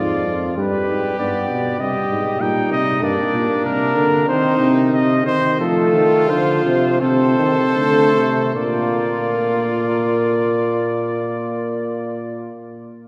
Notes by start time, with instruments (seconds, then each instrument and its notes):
Already playing: bass trombone G#2, trombone F3, trumpet F4 D5
0.27 bass trombone F2
0.57 bass trombone G2, trombone G3, trumpet G4 B4
0.87 bass trombone G#2
1.18 bass trombone G2, trombone B3, trumpet D5
1.49 bass trombone B2
1.79 bass trombone C3, trombone G3, trumpet G4 D#5
2.10 bass trombone G#2
2.40 bass trombone A#2, trombone G3, trumpet D#4 G5
2.71 bass trombone C3, trumpet D#5
3.02 bass trombone G2, trombone A#3, trumpet D4 D5
3.33 bass trombone A#2
3.64 bass trombone C3, trumpet A#4
3.96 bass trombone D3
4.28 bass trombone D#3, trombone C4, trumpet D#4 C5
4.60 bass trombone C3
4.93 bass trombone C3, trumpet D#5
5.26 bass trombone D#3, trumpet C5
5.59 bass trombone F3, trombone A3, trumpet F4 A4
5.94 bass trombone D#3
6.29 bass trombone D3, trombone F3, trumpet C5
6.65 bass trombone C3
7.00 bass trombone C3, trombone C4, trumpet A4 C5
7.39 bass trombone D#3
7.76 bass trombone D3, trombone A3
8.15 bass trombone C3
8.55 bass trombone A#2, trombone A#3, trumpet F4 D5